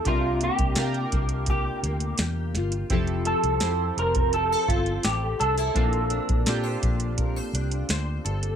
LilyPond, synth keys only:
\new Staff \with { instrumentName = "Synth keys" } { \time 4/4 \key f \major \tempo 4 = 84 <d' f' g' bes'>8 r8 <d' f' g' bes'>4. r4. | <c' e' g' a'>8 r8 <c' e' g' c''>4. r4. | <c' d' f' a'>8 r8 <c' d' f' g'>4. r4. | }